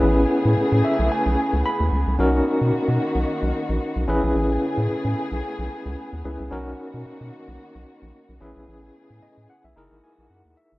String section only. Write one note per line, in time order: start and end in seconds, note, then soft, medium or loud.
0.00 2.17 C#3 medium
0.00 2.17 A3 medium
0.00 4.05 B3 medium
0.00 2.17 G#4 medium
2.20 4.07 D#3 medium
2.20 4.07 A#3 medium
2.20 4.07 F#4 medium
4.08 6.49 C#3 medium
4.08 6.49 A3 medium
4.08 8.37 B3 medium
4.08 6.49 G#4 medium
6.52 8.39 D#3 medium
6.52 8.39 A#3 medium
6.52 8.39 F#4 medium
8.41 9.75 C#3 medium
8.41 9.75 A3 medium
8.41 9.75 B3 medium
8.41 9.75 G#4 medium
9.76 10.79 E3 medium
9.76 10.79 G#3 medium
9.76 10.79 A#3 medium
9.76 10.79 F#4 medium